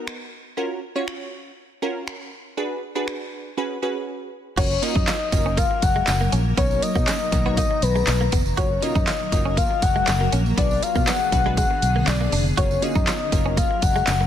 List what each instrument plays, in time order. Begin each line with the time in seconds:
Already playing: synth stab B3 D#4 F#4 A#4
0.07 finger snap
0.57 synth stab C#4 F4 F#4 A#4
0.95 synth stab C#4 F4 F#4 C#5
1.08 finger snap
1.82 synth stab C#4 F4 F#4 A#4
2.08 finger snap
2.57 synth stab D4 F#4 G#4 B4
2.95 synth stab D4 F#4 G#4 B4
3.08 finger snap
3.57 synth stab C#4 F#4 G#4 B4
3.82 synth stab C#4 F#4 G#4 B4
4.57 fingered electric bass F#1, ambient pad F#3 A#3 A#4, synth stab A#3 C#4 F4 F#4 A#4, clean electric guitar F#4, soft synth lead C#5, kick, closed hi-hat, crash, tambourine
4.71 tambourine
4.82 synth stab A#3 C#4 F4 F#4 A#4, soft synth lead D#5, muted clean electric guitar stroke, closed hi-hat, tambourine
4.96 fingered electric bass F#2, clean electric guitar D#4, kick
5.08 clean electric guitar F4, snare, clap, closed hi-hat, tambourine
5.32 fingered electric bass F#1, synth stab A#3 C#4 F4 F#4 A#4, muted clean electric guitar stroke, kick, closed hi-hat, tambourine
5.46 clean electric guitar C#4
5.57 clean electric guitar A#3, soft synth lead F5, kick, closed hi-hat, tambourine
5.71 muted clean electric guitar stroke
5.82 fingered electric bass F#1, soft synth lead F#5, kick, closed hi-hat, tambourine
5.96 clean electric guitar G#3
6.07 fingered electric bass F#1, muted clean electric guitar stroke, snare, clap, closed hi-hat, tambourine
6.21 clean electric guitar A#3
6.32 fingered electric bass A#1, clean electric guitar C#4, closed hi-hat, tambourine
6.57 fingered electric bass B1, ambient pad B2 D#3 A#5, synth stab A#3 B3 D#4 F#4 A#4, clean electric guitar B3, soft synth lead C#5, kick, closed hi-hat, tambourine
6.71 tambourine
6.82 soft synth lead D#5, muted clean electric guitar stroke, closed hi-hat, tambourine
6.95 fingered electric bass B2, clean electric guitar A#3, kick, tambourine
7.07 clean electric guitar C#4, snare, clap, closed hi-hat, tambourine
7.32 fingered electric bass B1, synth stab A#3 B3 D#4 F#4 A#4, muted clean electric guitar stroke, kick, closed hi-hat, tambourine
7.45 synth stab A#3 B3 D#4 F#4 C#5, clean electric guitar B3
7.57 clean electric guitar A#3, soft synth lead D#5, kick, closed hi-hat, tambourine
7.71 muted clean electric guitar stroke
7.82 fingered electric bass B1, soft synth lead B4, closed hi-hat, tambourine
7.96 clean electric guitar G#3, tambourine
8.07 fingered electric bass B1, muted clean electric guitar stroke, snare, clap, closed hi-hat, tambourine
8.21 clean electric guitar A#3
8.32 fingered electric bass F1, clean electric guitar B3, kick, closed hi-hat, tambourine
8.46 tambourine
8.57 fingered electric bass F#1, ambient pad F#3 A#3 A#4, synth stab A#3 C#4 F4 F#4 A#4, clean electric guitar F#4, soft synth lead C#5, kick, closed hi-hat, tambourine
8.82 synth stab A#3 C#4 F4 F#4 A#4, soft synth lead D#5, muted clean electric guitar stroke, closed hi-hat, tambourine
8.95 fingered electric bass F#2, clean electric guitar D#4, kick, tambourine
9.07 clean electric guitar F4, snare, clap, closed hi-hat, tambourine
9.32 fingered electric bass F#1, synth stab A#3 C#4 F4 F#4 A#4, muted clean electric guitar stroke, kick, closed hi-hat, tambourine
9.45 clean electric guitar C#4
9.57 clean electric guitar A#3, soft synth lead F5, kick, closed hi-hat, tambourine
9.71 muted clean electric guitar stroke
9.82 fingered electric bass F#1, soft synth lead F#5, kick, closed hi-hat, tambourine
9.96 clean electric guitar G#3
10.07 fingered electric bass F#1, muted clean electric guitar stroke, snare, clap, closed hi-hat, tambourine
10.21 clean electric guitar A#3
10.32 fingered electric bass A#1, clean electric guitar C#4, closed hi-hat, tambourine
10.46 tambourine
10.57 fingered electric bass B1, ambient pad D3 B3 G#4, synth stab B3 D4 F#4 G#4 B4, clean electric guitar B3, soft synth lead D5, kick, closed hi-hat, tambourine
10.71 tambourine
10.83 soft synth lead F5, muted clean electric guitar stroke, closed hi-hat, tambourine
10.95 fingered electric bass B2, clean electric guitar A#3, kick, tambourine
11.07 clean electric guitar B3, soft synth lead F#5, snare, clap, closed hi-hat, tambourine
11.32 fingered electric bass B1, synth stab B3 D4 F#4 G#4 B4, muted clean electric guitar stroke, kick, closed hi-hat, tambourine
11.46 clean electric guitar G#3, synth stab B3 D4 F#4 G#4 B4
11.57 clean electric guitar G#3, soft synth lead F#5, kick, closed hi-hat, tambourine
11.71 muted clean electric guitar stroke
11.82 fingered electric bass B1, closed hi-hat, tambourine
11.96 clean electric guitar A#3
12.07 fingered electric bass B1, soft synth lead D5, snare, clap, closed hi-hat, tambourine
12.21 clean electric guitar A#3
12.32 fingered electric bass F1, clean electric guitar D4, open hi-hat, tambourine
12.46 tambourine
12.57 fingered electric bass F#1, ambient pad F#3 C#4 A#4, synth stab A#3 C#4 F4 F#4 A#4, clean electric guitar F#4, soft synth lead C#5, kick, closed hi-hat, tambourine
12.71 tambourine
12.82 synth stab A#3 C#4 F4 F#4 G#4, soft synth lead D#5, muted clean electric guitar stroke, closed hi-hat, tambourine
12.95 fingered electric bass F#2, clean electric guitar D#4, kick, tambourine
13.07 clean electric guitar F4, snare, clap, closed hi-hat, tambourine
13.32 fingered electric bass F#1, synth stab A#3 C#4 F4 F#4 A#4, muted clean electric guitar stroke, kick, closed hi-hat, tambourine
13.46 clean electric guitar C#4
13.57 clean electric guitar A#3, soft synth lead F5, kick, closed hi-hat, tambourine
13.71 muted clean electric guitar stroke
13.82 fingered electric bass F#1, soft synth lead F#5, kick, closed hi-hat, tambourine
13.96 clean electric guitar G#3, tambourine
14.07 fingered electric bass F#1, muted clean electric guitar stroke, snare, clap, closed hi-hat, tambourine
14.21 clean electric guitar A#3